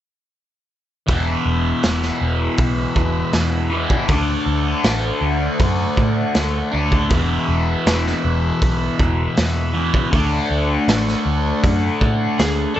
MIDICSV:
0, 0, Header, 1, 6, 480
1, 0, Start_track
1, 0, Tempo, 752823
1, 694, Time_signature, 4, 2, 24, 8
1, 8159, End_track
2, 0, Start_track
2, 0, Title_t, "Electric slide guitar"
2, 0, Program_c, 0, 29
2, 7903, Note_on_c, 0, 68, 65
2, 8121, Note_off_c, 0, 68, 0
2, 8136, Note_on_c, 0, 69, 65
2, 8159, Note_off_c, 0, 69, 0
2, 8159, End_track
3, 0, Start_track
3, 0, Title_t, "Tonewheel organ"
3, 0, Program_c, 1, 16
3, 691, Note_on_c, 1, 56, 54
3, 693, Note_on_c, 1, 76, 60
3, 695, Note_on_c, 1, 64, 49
3, 697, Note_on_c, 1, 71, 49
3, 2588, Note_off_c, 1, 56, 0
3, 2589, Note_off_c, 1, 76, 0
3, 2590, Note_off_c, 1, 64, 0
3, 2591, Note_off_c, 1, 71, 0
3, 2595, Note_on_c, 1, 62, 49
3, 2595, Note_on_c, 1, 78, 62
3, 2598, Note_on_c, 1, 73, 51
3, 2599, Note_on_c, 1, 57, 55
3, 4504, Note_off_c, 1, 62, 0
3, 4504, Note_off_c, 1, 78, 0
3, 4505, Note_off_c, 1, 73, 0
3, 4506, Note_off_c, 1, 57, 0
3, 4520, Note_on_c, 1, 56, 58
3, 4521, Note_on_c, 1, 71, 52
3, 4521, Note_on_c, 1, 76, 61
3, 4523, Note_on_c, 1, 64, 52
3, 6430, Note_off_c, 1, 56, 0
3, 6430, Note_off_c, 1, 71, 0
3, 6430, Note_off_c, 1, 76, 0
3, 6431, Note_off_c, 1, 64, 0
3, 6462, Note_on_c, 1, 78, 64
3, 6464, Note_on_c, 1, 73, 51
3, 6465, Note_on_c, 1, 57, 58
3, 6466, Note_on_c, 1, 62, 52
3, 8159, Note_off_c, 1, 57, 0
3, 8159, Note_off_c, 1, 62, 0
3, 8159, Note_off_c, 1, 73, 0
3, 8159, Note_off_c, 1, 78, 0
3, 8159, End_track
4, 0, Start_track
4, 0, Title_t, "Distorted electric guitar"
4, 0, Program_c, 2, 30
4, 679, Note_on_c, 2, 40, 67
4, 692, Note_on_c, 2, 47, 71
4, 703, Note_on_c, 2, 52, 78
4, 2347, Note_off_c, 2, 40, 0
4, 2351, Note_off_c, 2, 52, 0
4, 2354, Note_off_c, 2, 47, 0
4, 2359, Note_on_c, 2, 52, 66
4, 2375, Note_on_c, 2, 47, 61
4, 2382, Note_on_c, 2, 40, 54
4, 2589, Note_off_c, 2, 52, 0
4, 2597, Note_off_c, 2, 47, 0
4, 2601, Note_off_c, 2, 40, 0
4, 2605, Note_on_c, 2, 50, 71
4, 2617, Note_on_c, 2, 57, 74
4, 2627, Note_on_c, 2, 62, 78
4, 4274, Note_off_c, 2, 50, 0
4, 4274, Note_off_c, 2, 62, 0
4, 4280, Note_off_c, 2, 57, 0
4, 4281, Note_on_c, 2, 62, 68
4, 4291, Note_on_c, 2, 57, 60
4, 4304, Note_on_c, 2, 50, 61
4, 4511, Note_off_c, 2, 62, 0
4, 4516, Note_off_c, 2, 57, 0
4, 4523, Note_off_c, 2, 50, 0
4, 4526, Note_on_c, 2, 40, 81
4, 4538, Note_on_c, 2, 47, 78
4, 4553, Note_on_c, 2, 52, 82
4, 6196, Note_off_c, 2, 52, 0
4, 6197, Note_off_c, 2, 40, 0
4, 6203, Note_off_c, 2, 47, 0
4, 6204, Note_on_c, 2, 52, 68
4, 6216, Note_on_c, 2, 47, 66
4, 6229, Note_on_c, 2, 40, 54
4, 6435, Note_off_c, 2, 52, 0
4, 6441, Note_off_c, 2, 47, 0
4, 6446, Note_on_c, 2, 50, 73
4, 6447, Note_off_c, 2, 40, 0
4, 6457, Note_on_c, 2, 57, 77
4, 6470, Note_on_c, 2, 62, 82
4, 8115, Note_off_c, 2, 50, 0
4, 8116, Note_off_c, 2, 62, 0
4, 8120, Note_off_c, 2, 57, 0
4, 8124, Note_on_c, 2, 62, 65
4, 8159, Note_off_c, 2, 62, 0
4, 8159, End_track
5, 0, Start_track
5, 0, Title_t, "Picked electric bass"
5, 0, Program_c, 3, 34
5, 691, Note_on_c, 3, 28, 69
5, 857, Note_off_c, 3, 28, 0
5, 929, Note_on_c, 3, 28, 72
5, 1095, Note_off_c, 3, 28, 0
5, 1171, Note_on_c, 3, 28, 71
5, 1336, Note_off_c, 3, 28, 0
5, 1410, Note_on_c, 3, 28, 73
5, 1575, Note_off_c, 3, 28, 0
5, 1648, Note_on_c, 3, 35, 72
5, 1814, Note_off_c, 3, 35, 0
5, 1889, Note_on_c, 3, 28, 69
5, 2054, Note_off_c, 3, 28, 0
5, 2124, Note_on_c, 3, 40, 77
5, 2456, Note_off_c, 3, 40, 0
5, 2607, Note_on_c, 3, 38, 73
5, 2773, Note_off_c, 3, 38, 0
5, 2846, Note_on_c, 3, 38, 76
5, 3012, Note_off_c, 3, 38, 0
5, 3086, Note_on_c, 3, 33, 69
5, 3252, Note_off_c, 3, 33, 0
5, 3322, Note_on_c, 3, 38, 74
5, 3490, Note_off_c, 3, 38, 0
5, 3571, Note_on_c, 3, 42, 74
5, 3736, Note_off_c, 3, 42, 0
5, 3810, Note_on_c, 3, 45, 75
5, 3975, Note_off_c, 3, 45, 0
5, 4051, Note_on_c, 3, 38, 74
5, 4216, Note_off_c, 3, 38, 0
5, 4294, Note_on_c, 3, 38, 71
5, 4533, Note_on_c, 3, 28, 73
5, 4543, Note_off_c, 3, 38, 0
5, 4698, Note_off_c, 3, 28, 0
5, 4772, Note_on_c, 3, 28, 76
5, 4937, Note_off_c, 3, 28, 0
5, 5013, Note_on_c, 3, 28, 72
5, 5178, Note_off_c, 3, 28, 0
5, 5256, Note_on_c, 3, 28, 78
5, 5420, Note_off_c, 3, 28, 0
5, 5497, Note_on_c, 3, 35, 76
5, 5661, Note_off_c, 3, 35, 0
5, 5738, Note_on_c, 3, 28, 71
5, 5902, Note_off_c, 3, 28, 0
5, 5980, Note_on_c, 3, 40, 83
5, 6309, Note_off_c, 3, 40, 0
5, 6459, Note_on_c, 3, 38, 76
5, 6623, Note_off_c, 3, 38, 0
5, 6697, Note_on_c, 3, 38, 70
5, 6862, Note_off_c, 3, 38, 0
5, 6936, Note_on_c, 3, 33, 74
5, 7101, Note_off_c, 3, 33, 0
5, 7176, Note_on_c, 3, 38, 73
5, 7341, Note_off_c, 3, 38, 0
5, 7422, Note_on_c, 3, 42, 77
5, 7584, Note_off_c, 3, 42, 0
5, 7660, Note_on_c, 3, 45, 70
5, 7823, Note_off_c, 3, 45, 0
5, 7902, Note_on_c, 3, 38, 77
5, 8064, Note_off_c, 3, 38, 0
5, 8159, End_track
6, 0, Start_track
6, 0, Title_t, "Drums"
6, 690, Note_on_c, 9, 46, 43
6, 692, Note_on_c, 9, 36, 88
6, 754, Note_off_c, 9, 46, 0
6, 756, Note_off_c, 9, 36, 0
6, 1168, Note_on_c, 9, 46, 42
6, 1171, Note_on_c, 9, 38, 86
6, 1232, Note_off_c, 9, 46, 0
6, 1235, Note_off_c, 9, 38, 0
6, 1291, Note_on_c, 9, 38, 27
6, 1355, Note_off_c, 9, 38, 0
6, 1643, Note_on_c, 9, 46, 41
6, 1648, Note_on_c, 9, 36, 84
6, 1707, Note_off_c, 9, 46, 0
6, 1711, Note_off_c, 9, 36, 0
6, 1887, Note_on_c, 9, 36, 67
6, 1950, Note_off_c, 9, 36, 0
6, 2123, Note_on_c, 9, 46, 40
6, 2126, Note_on_c, 9, 38, 87
6, 2186, Note_off_c, 9, 46, 0
6, 2190, Note_off_c, 9, 38, 0
6, 2487, Note_on_c, 9, 36, 65
6, 2551, Note_off_c, 9, 36, 0
6, 2605, Note_on_c, 9, 46, 44
6, 2607, Note_on_c, 9, 36, 87
6, 2668, Note_off_c, 9, 46, 0
6, 2671, Note_off_c, 9, 36, 0
6, 3086, Note_on_c, 9, 46, 39
6, 3089, Note_on_c, 9, 38, 89
6, 3150, Note_off_c, 9, 46, 0
6, 3153, Note_off_c, 9, 38, 0
6, 3569, Note_on_c, 9, 36, 80
6, 3570, Note_on_c, 9, 46, 37
6, 3632, Note_off_c, 9, 36, 0
6, 3633, Note_off_c, 9, 46, 0
6, 3808, Note_on_c, 9, 36, 65
6, 3872, Note_off_c, 9, 36, 0
6, 4046, Note_on_c, 9, 46, 40
6, 4049, Note_on_c, 9, 38, 88
6, 4110, Note_off_c, 9, 46, 0
6, 4113, Note_off_c, 9, 38, 0
6, 4411, Note_on_c, 9, 36, 69
6, 4475, Note_off_c, 9, 36, 0
6, 4528, Note_on_c, 9, 46, 41
6, 4531, Note_on_c, 9, 36, 92
6, 4592, Note_off_c, 9, 46, 0
6, 4595, Note_off_c, 9, 36, 0
6, 5015, Note_on_c, 9, 46, 42
6, 5018, Note_on_c, 9, 38, 87
6, 5079, Note_off_c, 9, 46, 0
6, 5082, Note_off_c, 9, 38, 0
6, 5143, Note_on_c, 9, 38, 25
6, 5206, Note_off_c, 9, 38, 0
6, 5495, Note_on_c, 9, 36, 87
6, 5496, Note_on_c, 9, 46, 43
6, 5559, Note_off_c, 9, 36, 0
6, 5560, Note_off_c, 9, 46, 0
6, 5735, Note_on_c, 9, 36, 69
6, 5799, Note_off_c, 9, 36, 0
6, 5975, Note_on_c, 9, 46, 46
6, 5978, Note_on_c, 9, 38, 93
6, 6039, Note_off_c, 9, 46, 0
6, 6042, Note_off_c, 9, 38, 0
6, 6337, Note_on_c, 9, 36, 67
6, 6401, Note_off_c, 9, 36, 0
6, 6458, Note_on_c, 9, 36, 91
6, 6462, Note_on_c, 9, 46, 44
6, 6522, Note_off_c, 9, 36, 0
6, 6526, Note_off_c, 9, 46, 0
6, 6940, Note_on_c, 9, 46, 43
6, 6943, Note_on_c, 9, 38, 87
6, 7004, Note_off_c, 9, 46, 0
6, 7007, Note_off_c, 9, 38, 0
6, 7066, Note_on_c, 9, 38, 26
6, 7130, Note_off_c, 9, 38, 0
6, 7419, Note_on_c, 9, 36, 87
6, 7423, Note_on_c, 9, 46, 42
6, 7483, Note_off_c, 9, 36, 0
6, 7487, Note_off_c, 9, 46, 0
6, 7659, Note_on_c, 9, 36, 68
6, 7723, Note_off_c, 9, 36, 0
6, 7902, Note_on_c, 9, 46, 41
6, 7905, Note_on_c, 9, 38, 92
6, 7965, Note_off_c, 9, 46, 0
6, 7969, Note_off_c, 9, 38, 0
6, 8159, End_track
0, 0, End_of_file